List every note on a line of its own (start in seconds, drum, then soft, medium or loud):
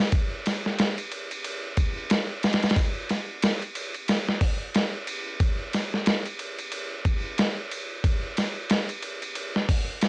0.00 snare loud
0.12 kick loud
0.12 ride medium
0.46 snare soft
0.46 ride medium
0.66 snare soft
0.78 snare loud
0.78 ride medium
0.98 ride soft
1.11 ride medium
1.31 ride soft
1.44 ride medium
1.77 kick medium
1.77 ride medium
2.10 snare loud
2.10 ride medium
2.43 snare medium
2.43 ride medium
2.53 snare medium
2.53 ride medium
2.63 snare medium
2.63 ride medium
2.70 snare medium
2.70 ride medium
2.76 kick loud
2.76 ride medium
3.10 snare medium
3.10 ride medium
3.43 snare loud
3.43 ride medium
3.62 ride soft
3.75 ride medium
3.95 ride soft
4.08 snare medium
4.08 ride medium
4.29 snare medium
4.41 kick medium
4.41 open hi-hat medium
4.75 snare loud
4.75 ride medium
5.07 ride medium
5.40 kick loud
5.40 ride medium
5.73 snare soft
5.73 ride medium
5.94 snare soft
6.06 snare loud
6.06 ride medium
6.26 ride soft
6.39 ride medium
6.59 ride soft
6.72 ride medium
7.05 kick medium
7.05 ride medium
7.38 snare loud
7.38 ride medium
7.71 ride medium
8.04 kick loud
8.04 ride medium
8.37 snare medium
8.37 ride medium
8.70 snare loud
8.70 ride medium
8.89 ride soft
9.02 ride medium
9.22 ride soft
9.35 ride medium
9.56 snare medium
9.69 kick loud
9.69 open hi-hat medium
10.01 snare loud
10.01 ride medium